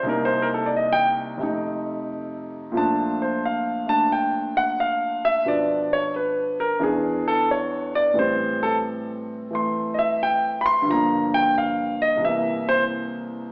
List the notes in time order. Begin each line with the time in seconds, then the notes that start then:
0.03 C2 C3 A#3
0.07 D#4 A#4
0.25 C5
0.42 A#4
0.54 A4
0.66 D5
0.77 D#5
0.93 G5
1.38 F2 C3 A3
1.43 D#4
2.72 A#2 F3 A3
2.77 D4 A5
3.22 C5
3.45 F5
3.86 A3 D4 A5
4.12 G5
4.57 F#5
4.80 F5
5.25 E5
5.45 B2 F3 B3 D4 D5
5.93 C#5
6.16 B4
6.60 A#4
6.79 E2 E3 B3 D4
6.83 G#4
7.28 A4
7.51 C#5
7.95 D5
8.14 A2 E3 G3
8.19 C4 C5
8.63 A4
9.51 E3 A3
9.55 C6
9.94 D#5
9.99 E5
10.23 G5
10.61 B5
10.66 C6
10.82 G2 D3
10.89 F3 A#3 A#5
11.34 G5
11.58 F5
12.02 D#5
12.17 C2 C3
12.24 E3 A#3 E5
12.69 C5